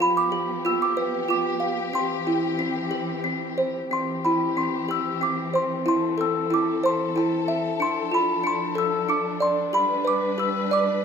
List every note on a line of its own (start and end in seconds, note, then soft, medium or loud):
0.00 1.90 F3 medium
0.00 1.92 B3 medium
0.00 0.64 F4 medium
0.00 3.88 G4 medium
0.00 0.17 B5 medium
0.17 0.62 D6 medium
0.32 1.60 G4 medium
0.65 1.27 F4 medium
0.65 0.73 E6 medium
0.82 1.29 D6 medium
0.97 1.93 B4 medium
1.28 1.93 F4 medium
1.28 1.90 D6 medium
1.60 1.93 F5 medium
1.93 3.89 E3 medium
1.93 3.89 C4 medium
1.93 2.58 C4 medium
1.93 3.21 C6 medium
2.27 3.58 E4 medium
2.59 3.23 C4 medium
2.91 3.91 G4 medium
3.24 3.90 C4 medium
3.58 3.91 C5 medium
3.91 7.77 E3 medium
3.91 4.56 C4 medium
3.91 7.77 C4 medium
3.91 5.85 G4 medium
3.91 4.26 C6 medium
4.25 5.55 E4 medium
4.25 4.55 B5 medium
4.57 5.20 C4 medium
4.57 4.87 C6 medium
4.88 5.86 G4 medium
4.88 5.23 E6 medium
5.21 5.86 C4 medium
5.21 5.53 D6 medium
5.54 5.86 C5 medium
5.54 5.87 C6 medium
5.86 6.49 E4 medium
5.86 9.68 A4 medium
5.86 6.18 C6 medium
6.18 7.47 A4 medium
6.18 6.50 E6 medium
6.50 7.15 E4 medium
6.50 6.86 D6 medium
6.83 7.80 C5 medium
6.83 7.00 C6 medium
7.16 7.80 E4 medium
7.16 7.62 A5 medium
7.48 7.80 E5 medium
7.80 9.71 F3 medium
7.80 8.42 D4 medium
7.80 11.05 D4 medium
7.80 8.11 C6 loud
8.11 9.40 F4 medium
8.11 8.46 B5 medium
8.44 9.07 D4 medium
8.44 8.78 C6 medium
8.75 9.72 A4 medium
8.75 9.10 E6 medium
9.09 9.73 D4 medium
9.09 9.24 D6 medium
9.40 9.73 D5 medium
9.40 9.74 C6 medium
9.73 11.05 G3 medium
9.73 10.37 G4 medium
9.73 11.05 B4 medium
9.73 10.04 B5 medium
10.05 11.05 B4 medium
10.05 10.40 D6 medium
10.38 11.03 G4 medium
10.38 10.72 E6 medium
10.71 11.05 D5 medium
10.71 11.03 D6 medium